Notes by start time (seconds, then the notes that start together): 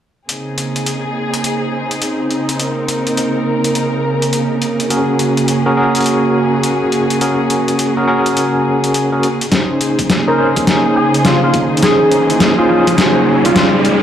0.29 C#3 A#3 C4 D#4 G#4, closed hi-hat
0.58 closed hi-hat
0.76 closed hi-hat
0.86 closed hi-hat
1.34 closed hi-hat
1.44 closed hi-hat
1.91 closed hi-hat
2.02 closed hi-hat
2.31 closed hi-hat
2.49 closed hi-hat
2.59 A#4, closed hi-hat
2.88 closed hi-hat
3.07 closed hi-hat
3.17 closed hi-hat
3.64 closed hi-hat
3.75 closed hi-hat
4.22 closed hi-hat
4.33 closed hi-hat
4.62 closed hi-hat
4.80 closed hi-hat
4.90 C#4 F#4 G#4 A#4, closed hi-hat
5.19 closed hi-hat
5.37 closed hi-hat
5.48 closed hi-hat
5.66 C#4 F#4 G#4 A#4
5.77 C#4 F#4 G#4 A#4
5.95 closed hi-hat
5.97 closed hi-hat
6.01 closed hi-hat
6.02 closed hi-hat
6.04 closed hi-hat
6.06 closed hi-hat
6.63 closed hi-hat
6.92 closed hi-hat
7.10 closed hi-hat
7.21 C#4 F#4 G#4 A#4, closed hi-hat
7.50 closed hi-hat
7.68 closed hi-hat
7.79 closed hi-hat
7.97 C#4 F#4 G#4 A#4
8.07 C#4 F#4 G#4 A#4
8.26 closed hi-hat
8.37 closed hi-hat
8.84 closed hi-hat
8.94 closed hi-hat
9.12 C#4 F#4 G#4 A#4
9.23 closed hi-hat
9.41 closed hi-hat
9.52 C#3 A#3 C#4 D#4 G#4 C5, kick, snare, closed hi-hat, riser
9.81 closed hi-hat
9.99 kick, closed hi-hat
10.10 snare, closed hi-hat
10.28 C#4 D#4 G#4 A#4 C5
10.38 C#4 D#4 G#4 A#4 C5
10.56 kick, closed hi-hat
10.67 snare, closed hi-hat
10.96 G#4
11.14 closed hi-hat
11.25 F4, snare, closed hi-hat
11.43 F4
11.54 kick, closed hi-hat
11.77 closed hi-hat
11.82 C#4 D#4 G#4 C5, kick, snare, closed hi-hat
12.12 closed hi-hat
12.30 closed hi-hat
12.40 snare, closed hi-hat
12.58 C#4 D#4 F4 G#4 C5
12.69 C#4 D#4 G#4 C5
12.87 kick, closed hi-hat
12.98 kick, snare, closed hi-hat
13.45 F4, kick, closed hi-hat
13.56 F4, snare, closed hi-hat
13.85 closed hi-hat